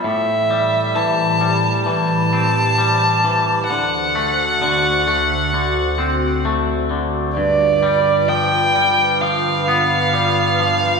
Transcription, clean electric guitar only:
\new Staff \with { instrumentName = "Clean electric guitar" } { \clef bass \time 4/4 \key a \minor \tempo 4 = 65 a,8 g8 e8 g8 e8 c'8 g8 e8 | d8 a8 d8 a8 d8 c'8 a8 d8 | g,8 g8 f8 g8 f8 b8 g8 f8 | }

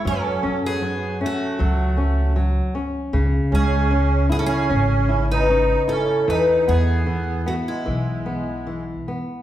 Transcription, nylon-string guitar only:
\new Staff \with { instrumentName = "Nylon-string guitar" } { \time 4/4 \key cis \minor \tempo 4 = 77 fis8 cis'8 fis8 cis'8 fis8 cis'8 fis8 cis'8 | cis8 gis8 cis'8 e'8 cis'8 e'8 cis'8 e'8 | e8 b8 e8 b8 e8 b8 e8 b8 | }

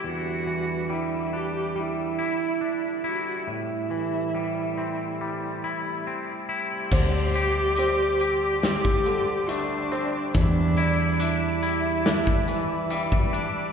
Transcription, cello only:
\new Staff \with { instrumentName = "Cello" } { \time 4/4 \key e \minor \tempo 4 = 70 fis'4 e'8 g'8 e'4. fis'8 | e'2. r4 | g'2 g'4 d'4 | d'4 e'2~ e'8 r8 | }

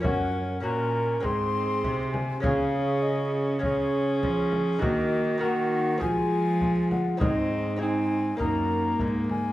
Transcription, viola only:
\new Staff \with { instrumentName = "Viola" } { \time 4/4 \key ees \dorian \tempo 4 = 100 des'4 des'4 c'2 | des'2 des'2 | bes4 bes4 aes2 | c'4 c'4 bes2 | }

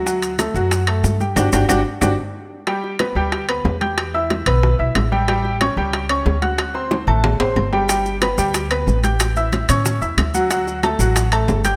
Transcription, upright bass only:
\new Staff \with { instrumentName = "Upright bass" } { \clef bass \time 4/4 \key g \major \tempo 4 = 184 d,4. fis,4. g,4 | g,,8 g,,8 g,,8 r8 g,,8 r4. | r4. d,4. e,4~ | e,4. b,,4 b,,8 a,,4~ |
a,,4. cis,4. d,4~ | d,4. a,,4 a,,8 g,,4~ | g,,4. d,4. a,,4~ | a,,4. a,4 e,8 d,4~ |
d,4. a,,4. g,,4 | }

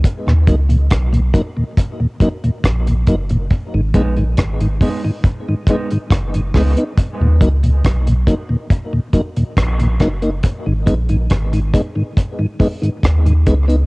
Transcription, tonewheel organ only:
\new Staff \with { instrumentName = "Tonewheel organ" } { \clef bass \time 4/4 \key ees \minor \tempo 4 = 69 r16 <ees, bes,>16 <ges bes ees'>16 <ees, bes,>16 r16 <ees, bes,>16 <ges bes ees'>16 <ees, bes,>16 r16 <ees, bes,>16 <ges bes ees'>16 <ees, bes,>16 r16 <ees, bes,>16 <ges bes ees'>16 <ees, bes,>16 | r16 <aes, ees>16 <aes ces' ees'>16 <aes, ees>16 r16 <aes, ees>16 <aes ces' ees'>16 <aes, ees>16 r16 <aes, ees>16 <aes ces' ees'>16 <aes, ees>16 r16 <aes, ees>16 <aes ces' ees'>16 <ces' ees'>16 | r16 <ees, bes,>16 <ges bes ees'>16 <ees, bes,>16 r16 <ees, bes,>16 <ges bes ees'>16 <ees, bes,>16 r16 <ees, bes,>16 <ges bes ees'>16 <ees, bes,>16 r16 <ees, bes,>16 <ges bes ees'>16 <bes ees'>16 | r16 <aes, ees>16 <aes ces' ees'>16 <aes, ees>16 r16 <aes, ees>16 <aes ces' ees'>16 <aes, ees>16 r16 <aes, ees>16 <aes ces' ees'>16 <aes, ees>16 r16 <aes, ees>16 <aes ces' ees'>16 <ces' ees'>16 | }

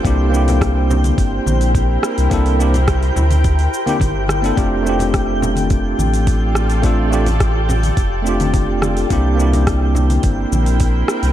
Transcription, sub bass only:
\new Staff \with { instrumentName = "Sub bass" } { \clef bass \time 4/4 \key f \major \tempo 4 = 106 c,2 g,,8 bes,,4 r16 c,16 | c,4. d,4 r8 g,,4 | f,,2~ f,,8 a,,4.~ | a,,2 f,,2 |
c,2 g,,8 bes,,4 r16 c,16 | }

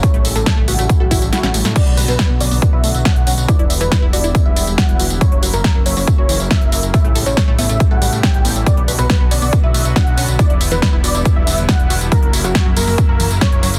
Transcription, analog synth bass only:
\new Staff \with { instrumentName = "Analog synth bass" } { \clef bass \time 4/4 \key b \minor \tempo 4 = 139 r16 a,,16 a,,16 a,,16 r16 a,,16 a,,16 a,,16 r16 a,,16 a,,16 a,,16 r16 a,,16 a,,16 a,16 | r16 b,,16 b,,16 b,,16 r16 b,,16 b,,16 b,,16 r16 b,,16 b,,16 b,,16 r16 b,,16 b,,16 b,,16 | r16 e,,16 e,,16 e,,16 r16 e,,16 e,,16 e,,16 r16 e,,16 e,,16 e,,16 r16 e,,16 e,,16 e,,16 | r16 fis,,16 fis,,16 fis,,16 r16 fis,,16 fis,,16 fis,,16 r16 fis,,16 fis,,16 fis,,16 r16 fis,,16 fis,,16 fis,,16 |
r16 a,,16 a,,16 a,,16 r16 a,,16 a,,16 a,,16 r16 a,16 a,,16 a,16 r16 a,,16 a,,16 a,,16 | r16 b,,16 b,,16 b,,16 r16 b,,16 b,,16 b,,16 r16 b,,16 b,,16 b,,16 r16 b,,16 b,,16 b,,16 | r16 e,,16 e,,16 e,,16 r16 e,,16 e,,16 e,,16 r16 e,,16 e,,16 e,,16 r16 e,,16 e,,16 e,,16 | r16 fis,,16 fis,,16 fis,,16 r16 fis,,16 fis,,16 fis,,16 r16 fis,,16 fis,,16 fis,,16 r16 fis,,16 fis,,16 fis,,16 | }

